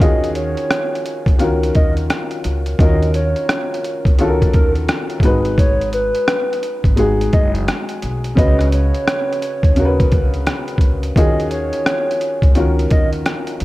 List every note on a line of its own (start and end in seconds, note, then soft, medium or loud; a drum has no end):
0.00 0.54 D#2 loud
0.00 1.23 D#3 medium
0.00 1.23 C#4 medium
0.00 1.24 F4 medium
0.00 1.24 F#4 medium
0.00 1.24 G#4 medium
0.00 0.32 D#5 medium
0.00 kick loud
0.00 closed hi-hat medium
0.24 closed hi-hat soft
0.35 1.36 C#5 medium
0.35 closed hi-hat medium
0.57 closed hi-hat soft
0.71 cross-stick loud
0.71 closed hi-hat medium
0.95 closed hi-hat soft
1.06 closed hi-hat medium
1.26 1.72 C#2 medium
1.26 kick medium
1.26 closed hi-hat soft
1.39 2.62 D#3 medium
1.39 2.63 C#4 medium
1.39 2.63 F4 medium
1.39 2.63 F#4 medium
1.39 2.64 A#4 medium
1.39 closed hi-hat medium
1.63 closed hi-hat soft
1.75 2.08 D#2 medium
1.75 1.94 D#5 medium
1.75 kick medium
1.75 closed hi-hat medium
1.97 closed hi-hat soft
2.10 cross-stick loud
2.10 closed hi-hat medium
2.31 closed hi-hat soft
2.44 2.77 C#2 medium
2.44 closed hi-hat medium
2.66 closed hi-hat soft
2.79 3.33 D#2 loud
2.79 4.02 D#3 medium
2.79 4.02 C#4 medium
2.79 4.03 F4 medium
2.79 4.03 F#4 medium
2.79 4.04 A#4 medium
2.79 3.11 D#5 medium
2.79 kick loud
2.79 closed hi-hat medium
3.03 closed hi-hat soft
3.14 4.15 C#5 medium
3.14 closed hi-hat medium
3.36 closed hi-hat soft
3.49 cross-stick loud
3.49 closed hi-hat medium
3.74 closed hi-hat soft
3.84 closed hi-hat medium
4.05 4.51 C#2 medium
4.05 kick medium
4.05 closed hi-hat soft
4.19 5.23 D#3 medium
4.19 5.23 C#4 medium
4.19 5.24 F4 medium
4.19 5.23 F#4 medium
4.19 4.28 A4 medium
4.19 closed hi-hat medium
4.28 5.28 A#4 medium
4.42 kick medium
4.42 closed hi-hat medium
4.53 4.87 D#2 medium
4.53 4.73 A#4 medium
4.53 kick medium
4.53 closed hi-hat medium
4.75 closed hi-hat soft
4.89 cross-stick loud
4.89 closed hi-hat medium
5.10 closed hi-hat soft
5.20 6.09 G#1 loud
5.20 6.46 G#3 medium
5.20 6.47 D#4 medium
5.20 kick medium
5.20 closed hi-hat medium
5.24 6.47 F#4 medium
5.24 6.47 B4 loud
5.45 closed hi-hat soft
5.58 5.90 C#5 loud
5.58 kick loud
5.58 closed hi-hat medium
5.81 closed hi-hat soft
5.93 6.94 B4 medium
5.93 closed hi-hat medium
6.15 closed hi-hat soft
6.28 cross-stick loud
6.28 closed hi-hat medium
6.53 closed hi-hat soft
6.63 closed hi-hat medium
6.84 7.30 G#1 medium
6.84 kick medium
6.84 closed hi-hat soft
6.96 8.20 G#3 medium
6.96 8.21 D#4 medium
6.96 8.21 F#4 medium
6.96 8.22 G#4 medium
6.96 closed hi-hat medium
7.21 closed hi-hat medium
7.33 7.66 F#1 medium
7.33 7.52 D#5 medium
7.33 kick medium
7.33 closed hi-hat soft
7.55 closed hi-hat soft
7.68 cross-stick loud
7.68 closed hi-hat medium
7.89 closed hi-hat soft
8.02 8.36 B1 medium
8.02 closed hi-hat medium
8.24 closed hi-hat soft
8.35 8.91 C#2 loud
8.35 9.59 C#3 medium
8.35 9.60 C#4 medium
8.35 9.60 F#4 medium
8.35 9.61 B4 medium
8.35 8.69 D#5 medium
8.35 kick loud
8.35 closed hi-hat medium
8.59 cross-stick soft
8.59 closed hi-hat soft
8.72 10.64 C#5 medium
8.72 closed hi-hat medium
8.95 closed hi-hat soft
9.08 cross-stick loud
9.08 closed hi-hat medium
9.33 closed hi-hat soft
9.42 closed hi-hat medium
9.63 10.09 D#2 medium
9.63 kick medium
9.63 closed hi-hat soft
9.76 11.00 C#3 medium
9.76 11.00 C#4 medium
9.76 11.00 F#4 medium
9.76 9.86 A#4 medium
9.76 closed hi-hat medium
9.85 11.04 B4 medium
10.00 kick medium
10.00 closed hi-hat soft
10.12 10.45 C#2 medium
10.12 kick medium
10.12 closed hi-hat medium
10.34 closed hi-hat soft
10.47 cross-stick loud
10.47 closed hi-hat medium
10.68 closed hi-hat soft
10.78 11.13 C#2 medium
10.78 kick medium
10.78 closed hi-hat medium
11.03 closed hi-hat soft
11.16 11.70 D#2 loud
11.16 12.39 D#3 medium
11.16 12.40 C#4 medium
11.16 12.40 F4 medium
11.16 12.40 F#4 medium
11.16 12.41 G#4 medium
11.16 11.48 D#5 medium
11.16 kick loud
11.16 closed hi-hat medium
11.40 closed hi-hat soft
11.51 12.52 C#5 medium
11.51 closed hi-hat medium
11.73 closed hi-hat soft
11.86 cross-stick loud
11.86 closed hi-hat medium
12.11 closed hi-hat soft
12.21 closed hi-hat medium
12.42 12.88 C#2 medium
12.42 kick medium
12.42 closed hi-hat soft
12.55 13.64 D#3 medium
12.55 13.64 C#4 medium
12.55 13.64 F4 medium
12.55 13.64 F#4 medium
12.55 13.64 A#4 medium
12.55 closed hi-hat medium
12.79 closed hi-hat medium
12.91 13.24 D#2 medium
12.91 13.10 D#5 medium
12.91 kick loud
12.91 closed hi-hat medium
13.13 closed hi-hat soft
13.26 cross-stick loud
13.26 closed hi-hat medium
13.47 closed hi-hat soft
13.60 13.64 C#2 medium
13.60 closed hi-hat medium